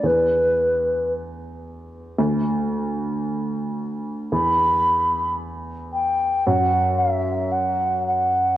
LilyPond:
<<
  \new Staff \with { instrumentName = "Flute" } { \time 4/4 \key e \minor \tempo 4 = 56 b'4 r2. | b''4 r8 g''8 fis''8 e''8 fis''8 fis''8 | }
  \new Staff \with { instrumentName = "Upright piano" } { \clef bass \time 4/4 \key e \minor e,2 d,2 | e,2 fis,2 | }
>>